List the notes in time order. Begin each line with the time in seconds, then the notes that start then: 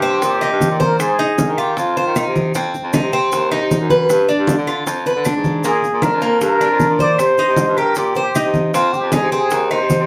Already playing: G2 G4
0.02 C4, high conga, maracas
0.22 A#2 G4, high bongo, high conga, maracas
0.41 D#4, high bongo, high conga, claves, maracas
0.51 G2
0.61 high bongo, low bongo, high conga, maracas
0.70 A#2
0.80 A#4 C5, high bongo, high conga, maracas
1.00 G#2 G#4, high bongo, high conga, claves, maracas
1.19 D#4, high bongo, high conga, maracas
1.38 high bongo, high conga, maracas
1.48 D#3
1.58 F4 G4, high conga, claves, maracas
1.77 F2 F4, high bongo, high conga, maracas
1.97 F4 C5, high bongo, high conga, maracas
2.06 D#3
2.16 D#4, high bongo, low bongo, high conga, claves, maracas
2.27 C3
2.36 high bongo, high conga, maracas
2.54 F2 C4, high bongo, high conga, maracas
2.74 high bongo, high conga, maracas
2.84 F2
2.93 D#4, high bongo, high conga, claves, maracas
3.02 C3
3.12 C4, high conga, maracas
3.32 D#2, high bongo, high conga, maracas
3.51 D#4, high bongo, high conga, claves, maracas
3.61 C3
3.71 high bongo, low bongo, high conga, maracas
3.80 F#2
3.90 B4, high bongo, high conga, maracas
4.09 G2, high bongo, high conga, claves, maracas
4.29 D4, high bongo, high conga, maracas
4.39 G2
4.47 high bongo, high conga, maracas
4.58 D3
4.67 F4, high conga, claves, maracas
4.86 F2, high bongo, high conga, maracas
5.06 B4, high bongo, high conga, maracas
5.16 D3
5.25 D4, high bongo, low bongo, high conga, claves, maracas
5.36 G#2
5.44 high bongo, high conga, maracas
5.64 A#2 A#3 G#4, high bongo, high conga, maracas
5.82 high bongo, high conga, maracas
5.93 A#2
6.02 D4 A#4, high bongo, high conga, claves, maracas
6.12 F2
6.21 A#3 A#4, high conga, maracas
6.41 G2 A#4, high bongo, high conga, maracas
6.60 D4, high bongo, high conga, claves, maracas
6.70 F2
6.80 high bongo, low bongo, high conga, maracas
6.89 A#2
6.99 C5 D5, high bongo, high conga, maracas
7.19 C3 C5, high bongo, high conga, claves, maracas
7.38 D#4, high bongo, high conga, maracas
7.48 C3
7.56 high bongo, high conga, maracas
7.67 G2
7.77 G4 A#4, high conga, claves, maracas
7.95 A#2 G4, high bongo, high conga, maracas
8.15 G4 C5, high bongo, high conga, maracas
8.34 D#4, high bongo, low bongo, high conga, claves, maracas
8.45 C3
8.54 high bongo, high conga, maracas
8.74 F2 C4 F4, high bongo, high conga, maracas
8.93 G4, high bongo, high conga, maracas
9.02 F2
9.12 D#4 G#4, high bongo, high conga, claves, maracas
9.22 C3
9.31 C4 G#4, high conga, maracas
9.51 D#2, high bongo, high conga, maracas
9.70 D#4 C5, high bongo, high conga, claves, maracas
9.81 C3
9.90 high bongo, low bongo, high conga, maracas
9.99 C3